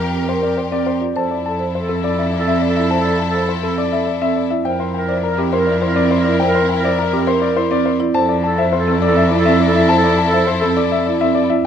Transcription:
0.00 1.00 F2 medium
0.00 0.98 G4 medium
0.00 0.18 A#4 medium
0.00 0.98 A#4 medium
0.10 0.33 C4 medium
0.10 0.31 A#4 medium
0.28 0.47 A#4 medium
0.28 0.48 C5 medium
0.40 0.62 A#4 soft
0.40 0.62 D5 medium
0.57 0.77 C5 medium
0.71 0.91 C4 medium
0.71 0.92 A#4 soft
0.71 0.91 D5 medium
0.86 1.06 C5 medium
1.01 1.20 F4 medium
1.01 1.20 D5 soft
1.16 4.50 F2 medium
1.16 4.47 E4 medium
1.16 1.37 A4 soft
1.16 4.47 A4 medium
1.16 1.35 C5 medium
1.16 1.35 A5 medium
1.31 1.50 D5 medium
1.46 1.68 A4 soft
1.46 1.64 A5 medium
1.59 1.78 C5 medium
1.75 1.98 A4 medium
1.75 1.93 C5 medium
1.89 2.08 C4 medium
1.89 2.08 A4 medium
2.03 2.22 A4 medium
2.03 2.29 A4 medium
2.03 2.23 D5 medium
2.18 2.37 E5 medium
2.33 2.52 D5 medium
2.38 2.59 A4 medium
2.47 2.66 C4 medium
2.47 2.66 E5 medium
2.61 2.81 D5 medium
2.69 2.90 A4 medium
2.76 2.95 E4 medium
2.76 2.95 E5 medium
2.90 3.10 C5 medium
2.90 3.10 A5 medium
2.99 3.20 A4 medium
3.05 3.24 D5 medium
3.20 3.39 A5 medium
3.29 3.51 A4 medium
3.34 3.53 C5 medium
3.49 3.68 C5 medium
3.60 3.82 C4 medium
3.60 3.81 A4 medium
3.60 3.82 A4 medium
3.78 3.97 A4 medium
3.78 3.97 D5 medium
3.90 4.12 A4 soft
3.90 4.12 E5 medium
4.07 4.26 D5 medium
4.21 4.41 C4 medium
4.21 4.42 A4 soft
4.21 4.41 E5 medium
4.36 4.55 D5 medium
4.50 4.70 E4 medium
4.50 4.70 E5 medium
4.65 8.00 F2 medium
4.65 7.96 E4 medium
4.65 7.96 A#4 medium
4.65 4.87 A#4 soft
4.65 4.84 C5 medium
4.65 4.84 G5 medium
4.80 4.99 C5 medium
4.94 5.18 A#4 medium
4.94 5.13 G5 medium
5.08 5.28 C5 medium
5.08 5.28 D5 medium
5.23 5.43 A#4 medium
5.23 5.48 A#4 medium
5.38 5.57 C4 medium
5.38 5.57 G4 medium
5.52 5.72 A#4 medium
5.52 5.72 C5 medium
5.57 5.78 A#4 medium
5.67 5.86 D5 medium
5.82 6.01 E4 medium
5.82 6.01 C5 medium
5.87 6.09 A#4 medium
5.96 6.15 C4 medium
5.96 6.15 D5 medium
6.11 6.30 C5 medium
6.18 6.39 A#4 medium
6.25 6.44 E4 medium
6.25 6.44 D5 medium
6.40 6.59 C5 medium
6.40 6.59 G5 medium
6.48 6.69 A#4 medium
6.55 6.74 C5 medium
6.69 6.88 G5 medium
6.79 7.00 A#4 medium
6.83 7.03 C5 medium
6.83 7.03 D5 medium
6.99 7.18 A#4 medium
7.10 7.32 C4 medium
7.10 7.32 G4 medium
7.10 7.31 A#4 medium
7.27 7.46 A#4 medium
7.27 7.46 C5 medium
7.39 7.61 A#4 medium
7.39 7.61 D5 medium
7.56 7.76 E4 medium
7.56 7.76 C5 medium
7.70 7.90 C4 medium
7.70 7.91 A#4 soft
7.70 7.90 D5 medium
7.86 8.05 C5 medium
8.00 8.19 E4 medium
8.00 8.19 D5 medium
8.14 11.49 F2 medium
8.14 11.46 E4 medium
8.14 8.36 A4 soft
8.14 11.46 A4 medium
8.14 8.34 C5 medium
8.14 8.34 A5 medium
8.29 8.48 D5 medium
8.44 8.67 A4 medium
8.44 8.63 A5 medium
8.58 8.77 C5 medium
8.58 8.77 E5 medium
8.73 8.97 A4 medium
8.73 8.92 C5 medium
8.87 9.07 C4 medium
8.87 9.07 A4 medium
9.02 9.21 A4 medium
9.02 9.21 D5 medium
9.07 9.28 A4 medium
9.17 9.36 E5 medium
9.31 9.50 E4 medium
9.31 9.50 D5 medium
9.37 9.58 A4 medium
9.45 9.65 C4 medium
9.45 9.65 E5 medium
9.61 9.80 D5 medium
9.68 9.89 A4 medium
9.75 9.94 E4 medium
9.75 9.94 E5 medium
9.89 10.09 C5 medium
9.89 10.08 A5 medium
9.98 10.19 A4 medium
10.04 10.23 D5 medium
10.18 10.38 A5 medium
10.28 10.49 A4 medium
10.33 10.52 C5 medium
10.33 10.52 E5 medium
10.47 10.67 C5 medium
10.59 10.80 A4 medium
10.59 10.81 A4 medium
10.63 10.82 C4 medium
10.77 10.96 A4 medium
10.77 10.96 D5 medium
10.89 11.11 A4 medium
10.89 11.11 E5 medium
11.06 11.25 E4 medium
11.06 11.25 D5 medium
11.20 11.40 C4 medium
11.20 11.41 A4 soft
11.20 11.40 E5 medium
11.35 11.54 D5 medium
11.50 11.66 E4 medium
11.50 11.66 E5 medium

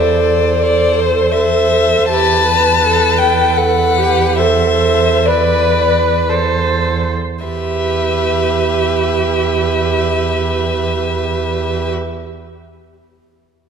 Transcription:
0.00 2.06 E2 soft
0.00 0.60 A4 soft
0.00 0.62 C5 soft
0.00 0.64 D5 soft
0.62 2.08 A4 soft
0.62 1.33 C5 soft
0.62 1.02 D5 soft
1.00 1.35 C5 soft
1.32 2.15 C5 soft
1.32 2.09 E5 soft
2.09 7.09 E2 soft
2.09 2.47 G4 soft
2.09 3.20 A5 soft
2.14 2.85 B4 soft
2.49 3.58 B4 soft
2.85 3.19 A4 soft
3.18 3.59 A4 soft
3.18 3.59 G5 soft
3.57 3.99 A4 soft
3.57 4.40 B4 soft
3.57 4.38 F#5 medium
3.98 4.41 G4 soft
4.38 5.28 A4 soft
4.38 5.30 C5 soft
4.38 5.27 E5 soft
5.26 6.30 B4 soft
5.26 6.31 B4 soft
5.26 6.27 D5 soft
6.28 7.14 A4 soft
6.28 7.14 C5 soft
7.45 11.91 E2 soft
7.45 11.91 G4 soft
7.45 11.91 B4 soft
7.45 11.91 E5 soft

